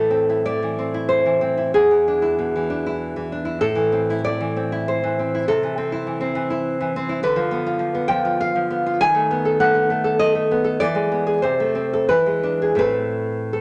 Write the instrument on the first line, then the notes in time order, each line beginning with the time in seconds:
nylon-string guitar
Already playing: A2 E3 A4
0.10 C4
0.30 E4
0.45 A3 D5
0.63 E3
0.78 C4
0.94 E4
1.09 C5
1.26 E3
1.41 C4
1.57 E4
1.74 E2 G#4
1.91 E3
2.08 D4
2.22 E4
2.39 B2
2.56 E3
2.70 D4
2.86 E4
3.16 E3
3.32 D4
3.45 E4
3.61 A2 A4
3.75 E3
3.92 C4
4.10 E4
4.24 A3 D5
4.41 E3
4.56 C4
4.72 E4
4.88 C5
5.04 E3
5.19 C4
5.35 E4
5.48 C3 A4
5.63 E3
5.78 C4
5.92 E4
6.07 E3
6.21 C4
6.35 E3
6.50 E4
6.81 E3
6.96 C4
7.09 E4
7.23 D3 B4
7.36 F3
7.51 B3
7.66 F4
7.79 F3
7.95 B3
8.08 F3 G5
8.25 F4
8.41 F5
8.55 F3
8.70 B3
8.86 F4
9.01 D#3 G#5
9.15 A3
9.31 B3
9.45 A4
9.60 A3 F#5
9.75 B3
9.90 A3
10.04 A4
10.19 D#5
10.35 A3
10.51 B3
10.64 A4
10.80 E3 D5
10.95 G#3
11.12 B3
11.27 G#4
11.42 C3 C5
11.60 A3
11.75 C4
11.94 A4
12.09 E3 B4
12.26 G#3
12.43 D4
12.62 G#4
12.75 A2 A3 C4 B4
13.53 A4